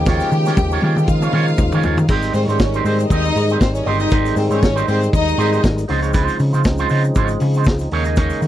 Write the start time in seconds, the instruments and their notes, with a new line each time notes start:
Already playing: picked electric bass D#2, tonewheel organ C#3 F3 G#3 A#3 D#4, violin section G4 G5
0.06 clean electric guitar A#3 F4 G#4 C#5, kick, snare, shaker
0.20 snare, shaker
0.32 picked electric bass D#3, muted clean electric guitar stroke, shaker
0.46 clean electric guitar A#3 F4 G#4 C#5, snare, shaker
0.56 picked electric bass D#2, muted clean electric guitar stroke, kick, high tom, shaker
0.71 clean electric guitar A#3 F4 G#4 C#5, shaker
0.82 picked electric bass D#3, clean electric guitar A#3 F4 G#4 C#5, high tom
0.96 picked electric bass D#3, muted clean electric guitar stroke, mid tom, shaker
1.07 picked electric bass D#3, violin section F4 F5, muted clean electric guitar stroke, kick, shaker
1.22 clean electric guitar A#3 F4 G#4 C#5, mid tom, shaker
1.33 picked electric bass D#3, clean electric guitar A#3 F4 G#4 C#5, mid tom
1.48 muted clean electric guitar stroke, shaker
1.58 picked electric bass D#2, muted clean electric guitar stroke, kick, mid tom, shaker
1.72 picked electric bass D#3, clean electric guitar A#3 F4 G#4 C#5, floor tom, shaker
1.83 picked electric bass D#2, clean electric guitar A#3 F4 G#4 C#5, floor tom, shaker
1.98 picked electric bass D#3, muted clean electric guitar stroke, floor tom, shaker
2.08 picked electric bass G#1, tonewheel organ D#3 G3 G#3 D#4, clean electric guitar C4 D#4 G4 C5, kick, crash, shaker
2.22 closed hi-hat, shaker
2.33 picked electric bass G#2, violin section C4 C5, open hi-hat, shaker
2.48 picked electric bass G#2, clean electric guitar C4 D#4 G4 C5, violin section C#4 C#5, closed hi-hat, shaker
2.59 picked electric bass G#1, muted clean electric guitar stroke, kick, snare, shaker
2.73 clean electric guitar C4 D#4 G4 C5, closed hi-hat, shaker
2.85 picked electric bass G#2, violin section C4 C5, clean electric guitar C4 D#4 G4 C5, open hi-hat, shaker
2.98 closed hi-hat, shaker
3.09 picked electric bass D#2, clean electric guitar C4 D#4 G4 D#5, violin section D#4 D#5, kick, closed hi-hat, shaker
3.25 muted clean electric guitar stroke, closed hi-hat, shaker
3.34 picked electric bass G#2, muted clean electric guitar stroke, open hi-hat, shaker
3.49 clean electric guitar C4 D#4 G4 C5, closed hi-hat, shaker
3.61 picked electric bass G#1, violin section C4 C5, kick, snare, shaker
3.75 violin section C#4 C#5, muted clean electric guitar stroke, closed hi-hat, shaker
3.85 picked electric bass G1, clean electric guitar C4 D#4 G4 C5, violin section D#4 D#5, open hi-hat
3.99 clean electric guitar C4 D#4 G4 D#5, violin section D#4 D#5, closed hi-hat, shaker
4.10 picked electric bass G#1, clean electric guitar C4 D#4 G4 C5, kick, closed hi-hat, shaker
4.25 closed hi-hat, shaker
4.36 picked electric bass G#2, violin section C4 C5, open hi-hat, shaker
4.50 picked electric bass G#2, clean electric guitar C4 D#4 G4 C5, violin section C#4 C#5, closed hi-hat, shaker
4.62 picked electric bass G#1, muted clean electric guitar stroke, kick, snare, shaker
4.76 clean electric guitar C4 D#4 G4 C5, closed hi-hat, shaker
4.87 picked electric bass G#2, clean electric guitar C4 D#4 G4 C5, violin section C4 C5, open hi-hat, shaker
5.01 muted clean electric guitar stroke, closed hi-hat, shaker
5.13 picked electric bass D#2, violin section D#4 D#5, muted clean electric guitar stroke, kick, closed hi-hat, shaker
5.27 muted clean electric guitar stroke, closed hi-hat, shaker
5.38 picked electric bass G#2, clean electric guitar C4 D#4 G4 C5, open hi-hat, shaker
5.52 clean electric guitar C4 D#4 G4 C5, closed hi-hat, shaker
5.63 picked electric bass G#1, muted clean electric guitar stroke, kick, snare, shaker
5.77 muted clean electric guitar stroke, closed hi-hat, shaker
5.88 picked electric bass C#2, tonewheel organ C#3 F3 G#3 C4 D#4, clean electric guitar G#3 D#4 F4 C5, open hi-hat
6.02 clean electric guitar G#3 D#4 F4 C#5, closed hi-hat, shaker
6.13 clean electric guitar G#3 D#4 F4 C5, kick, closed hi-hat, shaker
6.28 closed hi-hat, shaker
6.39 picked electric bass C#3, muted clean electric guitar stroke, open hi-hat, shaker
6.53 picked electric bass C#3, clean electric guitar G#3 D#4 F4 C5, closed hi-hat, shaker
6.64 picked electric bass C#2, muted clean electric guitar stroke, kick, snare, shaker
6.78 clean electric guitar G#3 D#4 F4 C5, closed hi-hat, shaker
6.89 picked electric bass C#3, clean electric guitar G#3 D#4 F4 C5, open hi-hat, shaker
7.04 muted clean electric guitar stroke, closed hi-hat, shaker
7.15 picked electric bass G#1, clean electric guitar G#3 D#4 F4 C#5, kick, closed hi-hat, shaker
7.28 muted clean electric guitar stroke, closed hi-hat, shaker
7.40 picked electric bass C#3, muted clean electric guitar stroke, open hi-hat, shaker
7.54 clean electric guitar G#3 D#4 F4 C5, closed hi-hat, shaker
7.64 picked electric bass C#2, kick, snare, shaker
7.79 muted clean electric guitar stroke, closed hi-hat, shaker
7.91 picked electric bass D#2, tonewheel organ C#3 D#3 A#3, clean electric guitar A#3 D#4 G#4 C#5, open hi-hat
8.05 clean electric guitar A#3 D#4 G#4 D#5, closed hi-hat, shaker
8.16 clean electric guitar A#3 D#4 G#4 C#5, kick, closed hi-hat, shaker
8.30 closed hi-hat, shaker
8.42 picked electric bass D#3, muted clean electric guitar stroke, open hi-hat, shaker